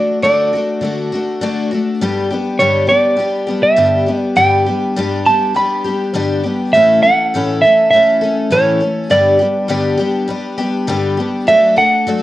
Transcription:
0.00 0.23 A3 soft
0.00 0.23 D4 medium
0.00 0.22 F#4 medium
0.00 0.18 D5 loud
0.22 0.52 D3 medium
0.22 0.52 A3 medium
0.22 0.53 D4 medium
0.22 0.52 F#4 medium
0.22 1.66 D5 medium
0.53 0.81 A3 soft
0.53 0.82 D4 medium
0.53 0.82 F#4 medium
0.81 1.11 D3 medium
0.81 1.11 A3 medium
0.81 1.12 D4 medium
0.81 1.11 F#4 medium
1.12 1.41 A3 medium
1.12 1.42 D4 medium
1.12 1.41 F#4 medium
1.41 1.70 D3 medium
1.41 1.71 A3 medium
1.41 1.71 D4 loud
1.41 1.70 F#4 medium
1.71 2.02 A3 soft
1.71 2.01 D4 soft
1.71 2.00 F#4 medium
2.01 2.30 G2 medium
2.01 2.30 D3 medium
2.01 2.30 G3 medium
2.01 2.30 B3 medium
2.01 2.30 D4 medium
2.01 2.29 G4 medium
2.31 2.59 G3 soft
2.31 2.59 B3 medium
2.31 2.60 D4 medium
2.31 2.59 G4 medium
2.59 2.88 G2 medium
2.59 2.89 D3 medium
2.59 2.89 G3 medium
2.59 2.89 B3 medium
2.59 2.88 D4 medium
2.59 2.86 G4 medium
2.59 2.86 C#5 medium
2.87 3.15 G3 soft
2.87 3.17 B3 soft
2.87 3.18 D4 medium
2.87 3.17 G4 medium
2.87 3.62 D5 medium
3.17 3.46 G3 medium
3.17 3.47 B3 medium
3.17 3.47 D4 medium
3.17 3.45 G4 medium
3.47 3.75 G3 medium
3.47 3.76 B3 medium
3.47 3.77 D4 medium
3.47 3.76 G4 medium
3.63 4.19 E5 medium
3.76 4.06 G2 medium
3.76 4.06 D3 medium
3.76 4.06 G3 medium
3.76 4.06 B3 medium
3.76 4.07 D4 medium
3.76 4.05 G4 medium
4.06 4.35 G3 soft
4.06 4.36 B3 soft
4.06 4.36 D4 medium
4.06 4.36 G4 soft
4.19 4.36 D5 medium
4.35 4.65 G2 medium
4.35 4.65 D3 medium
4.35 4.66 G3 medium
4.35 4.66 B3 medium
4.35 4.66 D4 medium
4.35 4.65 G4 medium
4.35 5.21 G5 loud
4.66 4.96 G3 soft
4.66 4.96 B3 soft
4.66 4.96 D4 medium
4.66 4.95 G4 medium
4.96 5.25 G2 medium
4.96 5.25 D3 medium
4.96 5.25 G3 medium
4.96 5.26 B3 medium
4.96 5.25 D4 medium
4.96 5.24 G4 medium
5.26 5.53 G3 soft
5.26 5.54 B3 soft
5.26 5.55 D4 medium
5.26 5.55 G4 medium
5.26 5.56 A5 loud
5.54 5.84 G3 medium
5.54 5.84 B3 medium
5.54 5.84 D4 medium
5.54 5.83 G4 medium
5.54 6.40 B5 medium
5.84 6.14 B3 soft
5.84 6.14 D4 medium
5.84 6.13 G4 medium
5.88 6.13 G3 soft
6.13 6.43 G2 medium
6.13 6.43 D3 medium
6.13 6.43 G3 medium
6.13 6.44 B3 medium
6.13 6.43 D4 medium
6.13 6.42 G4 medium
6.43 6.74 G3 soft
6.43 6.74 B3 medium
6.43 6.73 D4 soft
6.43 6.73 G4 medium
6.73 7.03 A2 medium
6.73 7.03 E3 medium
6.73 7.03 A3 medium
6.73 7.03 C#4 medium
6.73 7.02 A4 medium
6.73 7.02 E5 loud
7.03 7.34 A3 soft
7.03 7.33 C#4 soft
7.03 7.32 A4 soft
7.03 7.61 F#5 loud
7.34 7.62 A2 medium
7.34 7.63 E3 medium
7.34 7.63 A3 medium
7.34 7.63 C#4 medium
7.34 7.62 A4 medium
7.62 7.93 C#4 medium
7.62 7.92 A4 medium
7.62 7.89 E5 loud
7.67 7.93 A3 soft
7.91 8.22 E3 medium
7.91 8.22 A3 medium
7.91 8.52 E5 medium
7.95 8.22 C#4 medium
7.95 8.20 A4 medium
8.21 8.50 A3 soft
8.21 8.52 C#4 medium
8.21 8.51 A4 medium
8.50 8.80 A2 medium
8.50 8.81 E3 medium
8.50 8.81 A3 medium
8.50 8.81 C#4 medium
8.50 8.79 A4 medium
8.50 9.11 C#5 medium
8.80 9.11 A3 soft
8.80 9.11 C#4 soft
8.80 9.10 A4 soft
9.10 9.39 G2 medium
9.10 9.40 D3 medium
9.10 9.40 G3 medium
9.10 9.40 B3 medium
9.10 9.40 D4 medium
9.10 9.38 G4 medium
9.10 10.25 D5 loud
9.39 9.68 G3 soft
9.39 9.68 B3 medium
9.39 9.69 D4 medium
9.39 9.68 G4 medium
9.68 9.98 G2 medium
9.68 9.99 D3 medium
9.68 9.99 G3 medium
9.68 9.99 B3 medium
9.68 9.98 D4 medium
9.68 9.96 G4 medium
9.97 10.26 G3 medium
9.97 10.27 B3 medium
9.97 10.29 D4 medium
9.97 10.28 G4 medium
10.28 10.58 G3 medium
10.28 10.58 B3 medium
10.28 10.57 D4 medium
10.28 10.56 G4 medium
10.58 10.87 G3 soft
10.58 10.88 B3 medium
10.58 10.88 D4 medium
10.58 10.88 G4 medium
10.87 11.18 G2 medium
10.87 11.18 D3 medium
10.87 11.18 G3 loud
10.87 11.19 B3 medium
10.87 11.18 D4 medium
10.87 11.16 G4 medium
11.17 11.46 G3 soft
11.17 11.48 B3 medium
11.17 11.47 D4 soft
11.17 11.47 G4 medium
11.47 11.77 F#3 medium
11.47 11.78 A3 medium
11.47 11.77 D4 medium
11.47 11.75 A4 medium
11.47 11.77 E5 loud
11.76 12.06 A3 soft
11.76 12.07 D4 medium
11.76 12.07 A4 medium
11.76 12.23 F#5 loud
12.07 12.23 F#3 medium
12.07 12.23 A3 medium
12.07 12.23 D4 medium
12.07 12.23 A4 medium

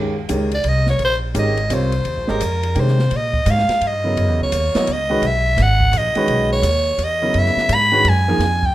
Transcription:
0.00 0.28 D#2 medium
0.00 0.14 D#3 medium
0.00 0.14 G#3 medium
0.00 0.14 C#4 medium
0.00 0.15 G4 soft
0.00 0.15 A#4 medium
0.29 0.63 C#2 medium
0.29 0.49 D#3 medium
0.29 0.49 G#3 medium
0.29 0.49 C#4 medium
0.29 0.50 G4 medium
0.29 0.50 A#4 medium
0.29 hi-hat pedal medium
0.29 ride medium
0.51 0.70 D5 medium
0.51 ride soft
0.64 0.98 C2 medium
0.64 ride medium
0.68 0.89 D#5 medium
0.86 1.00 C#5 medium
0.86 snare soft
0.99 1.33 A#1 medium
0.99 ride medium
1.05 1.16 C5 medium
1.34 1.69 G#1 medium
1.34 1.55 D#3 medium
1.34 1.55 G#3 medium
1.34 1.55 C#4 medium
1.34 1.55 G4 medium
1.34 1.55 A#4 medium
1.34 hi-hat pedal medium
1.34 ride medium
1.39 1.75 D#5 medium
1.57 ride soft
1.70 2.04 C2 medium
1.70 1.90 G3 medium
1.70 1.90 C4 medium
1.70 1.90 F4 medium
1.70 1.91 A#4 medium
1.70 1.91 C#5 medium
1.70 hi-hat pedal medium
1.70 ride medium
1.74 2.32 C5 medium
1.92 ride soft
2.05 2.17 D#2 medium
2.05 ride medium
2.17 2.28 A#1 soft
2.27 2.40 G#1 medium
2.27 2.39 G#3 medium
2.27 2.39 C#4 medium
2.27 2.39 G4 medium
2.27 2.81 A#4 medium
2.27 2.39 C5 medium
2.27 2.40 D#5 medium
2.27 snare soft
2.40 2.75 F2 medium
2.40 hi-hat pedal medium
2.40 ride medium
2.63 ride medium
2.75 3.10 C3 medium
2.75 2.96 D#3 medium
2.75 2.96 G#3 soft
2.75 2.96 C#4 soft
2.75 2.96 G4 medium
2.75 2.96 A#4 medium
2.75 ride medium
2.80 3.18 C5 medium
2.88 snare soft
2.99 snare soft
3.11 3.45 A#2 medium
3.11 ride medium
3.16 3.51 D#5 medium
3.33 kick medium
3.46 3.67 G#2 loud
3.46 hi-hat pedal medium
3.46 ride medium
3.50 3.88 F5 medium
3.58 snare soft
3.68 muted upright bass stroke soft
3.68 snare soft
3.68 ride soft
3.81 4.15 G2 medium
3.81 ride medium
3.87 4.42 D#5 medium
4.04 4.50 C#3 medium
4.04 4.50 F#3 medium
4.04 4.50 B3 medium
4.04 4.50 E4 medium
4.04 4.50 A#4 medium
4.16 4.28 F#2 medium
4.16 ride medium
4.28 4.40 E2 medium
4.40 4.51 C#2 medium
4.40 4.94 C#5 medium
4.52 4.73 D#2 medium
4.52 hi-hat pedal medium
4.52 ride medium
4.75 4.86 F#3 medium
4.75 4.86 B3 medium
4.75 4.86 E4 medium
4.75 4.87 A#4 medium
4.75 4.87 D#5 medium
4.75 muted upright bass stroke soft
4.75 snare medium
4.75 ride medium
4.87 5.21 C#2 medium
4.87 ride medium
4.92 5.28 D#5 medium
5.10 5.21 D#3 medium
5.10 5.21 G#3 medium
5.10 5.22 C#4 medium
5.10 5.22 F#4 medium
5.10 5.22 B4 medium
5.22 5.56 B1 medium
5.22 ride medium
5.27 5.64 E5 medium
5.57 5.91 G#1 medium
5.57 snare soft
5.57 ride medium
5.62 5.99 F#5 loud
5.80 kick medium
5.92 6.13 A#1 medium
5.92 hi-hat pedal soft
5.92 ride medium
5.97 6.52 D#5 medium
6.15 6.61 D#3 medium
6.15 6.61 G#3 medium
6.15 6.61 C#4 medium
6.15 6.61 F#4 medium
6.15 6.62 B4 medium
6.15 muted upright bass stroke soft
6.15 ride soft
6.27 6.62 B1 medium
6.27 ride medium
6.53 7.05 C#5 medium
6.62 6.97 D#2 medium
6.62 hi-hat pedal medium
6.62 ride medium
6.98 7.33 E2 medium
6.98 ride medium
7.04 7.40 D#5 medium
7.22 7.67 C#3 medium
7.22 7.67 F#3 medium
7.22 7.67 B3 medium
7.22 7.67 E4 medium
7.22 7.68 A#4 medium
7.34 7.55 F#2 medium
7.34 ride medium
7.39 7.76 E5 loud
7.46 snare soft
7.56 muted upright bass stroke soft
7.56 snare soft
7.69 8.03 G#2 loud
7.69 hi-hat pedal medium
7.69 ride medium
7.74 8.10 B5 loud
7.92 8.03 D#3 medium
7.92 8.03 G#3 medium
7.92 8.04 C#4 medium
7.92 8.04 F#4 medium
7.92 8.04 B4 medium
8.04 8.38 F#2 medium
8.04 ride medium
8.09 8.67 G#5 medium
8.28 8.39 F3 medium
8.28 8.39 A#3 medium
8.28 8.39 D#4 medium
8.28 8.40 G#4 medium
8.28 8.40 A#4 medium
8.39 8.74 F2 medium
8.39 snare soft
8.39 ride medium
8.63 8.75 G5 medium
8.63 kick medium

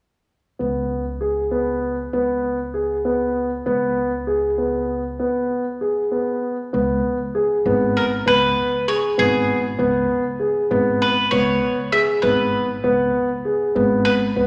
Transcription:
0.59 2.11 C#2 soft
0.59 1.03 B3 soft
1.21 1.43 G#4 soft
1.51 1.95 B3 medium
2.13 3.64 C#2 medium
2.13 2.57 B3 medium
2.74 2.96 G#4 soft
3.05 3.49 B3 medium
3.66 5.17 C#2 medium
3.66 4.10 B3 medium
4.27 4.49 G#4 medium
4.58 5.02 B3 medium
5.19 5.63 B3 medium
5.81 6.03 G#4 soft
6.11 6.55 B3 medium
6.73 7.00 C#2 medium
6.73 7.17 B3 medium
7.35 7.57 G#4 medium
7.65 8.18 G#1 medium
7.65 8.09 B3 medium
7.97 8.05 A#4 medium
8.26 8.53 C#2 medium
8.26 8.70 B3 medium
8.26 8.88 B4 medium
8.88 9.09 G#4 medium
8.88 8.96 C#5 medium
9.18 9.71 G#1 medium
9.18 9.62 B3 medium
9.18 9.61 G#4 medium
9.79 10.05 C#2 medium
9.79 10.22 B3 medium
10.40 10.62 G#4 soft
10.71 11.23 G#1 medium
10.71 11.14 B3 medium
11.02 11.31 B4 medium
11.31 11.58 C#2 medium
11.31 11.76 B3 medium
11.31 11.89 C#5 medium
11.92 12.14 G#4 soft
11.92 12.01 E5 medium
12.22 12.76 G#1 medium
12.22 12.67 B3 medium
12.22 12.65 B4 medium
12.84 13.10 C#2 medium
12.84 13.28 B3 medium
13.45 13.67 G#4 soft
13.75 14.28 G#1 medium
13.75 14.19 B3 medium
14.05 14.14 B4 medium
14.36 14.47 C#2 medium
14.36 14.47 B3 medium

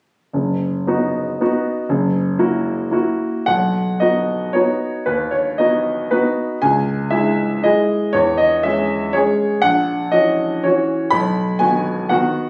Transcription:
0.33 0.86 F#1 soft
0.87 1.36 B3 soft
0.87 1.37 D#4 soft
0.87 1.37 F#4 soft
1.41 1.85 B3 soft
1.41 1.85 D#4 soft
1.41 1.86 F#4 soft
1.89 2.38 F#1 soft
2.39 2.89 A#3 soft
2.39 2.89 E4 soft
2.39 2.90 F#4 soft
2.91 3.44 A#3 soft
2.91 3.44 E4 soft
2.91 3.45 F#4 soft
3.46 4.01 B1 soft
3.46 4.02 F#5 medium
4.00 4.52 B3 soft
4.00 4.52 D#4 soft
4.00 4.52 F#4 soft
4.00 4.55 D#5 medium
4.53 5.03 B3 soft
4.53 5.03 D#4 soft
4.53 5.03 F#4 soft
4.53 5.06 C#5 medium
5.06 5.57 D#2 soft
5.06 5.32 B4 medium
5.31 5.58 C#5 soft
5.58 6.09 B3 soft
5.58 6.09 D#4 soft
5.58 6.09 F#4 soft
5.58 6.12 D#5 medium
6.11 6.57 B3 soft
6.11 6.58 D#4 soft
6.11 6.58 F#4 soft
6.11 6.61 B4 medium
6.62 7.11 C#2 soft
6.62 7.12 G#5 medium
7.11 7.61 G#3 soft
7.11 7.61 E4 soft
7.11 7.61 G#4 soft
7.11 7.64 E5 medium
7.64 8.11 G#3 soft
7.64 8.11 E4 soft
7.64 8.11 G#4 soft
7.64 8.14 D#5 medium
8.13 8.63 E2 medium
8.13 8.38 C#5 medium
8.38 8.64 D#5 medium
8.63 9.11 G#3 soft
8.63 9.11 C#4 soft
8.63 9.12 G#4 soft
8.63 9.15 E5 medium
9.13 9.58 G#3 soft
9.13 9.59 C#4 soft
9.13 9.59 G#4 soft
9.13 9.62 C#5 medium
9.62 10.11 A#1 medium
9.62 10.12 F#5 medium
10.12 10.60 E3 soft
10.12 10.60 C#4 soft
10.12 10.61 F#4 soft
10.12 10.64 D#5 medium
10.64 11.08 E3 soft
10.64 11.09 C#4 soft
10.64 11.09 F#4 soft
10.64 11.12 C#5 medium
11.10 11.59 B1 medium
11.10 11.60 B5 medium
11.59 12.07 D#3 soft
11.59 12.07 B3 soft
11.59 12.07 F#4 soft
11.59 12.10 G#5 medium
12.09 12.50 D#3 soft
12.09 12.50 B3 soft
12.09 12.50 F#4 soft
12.09 12.50 F#5 medium

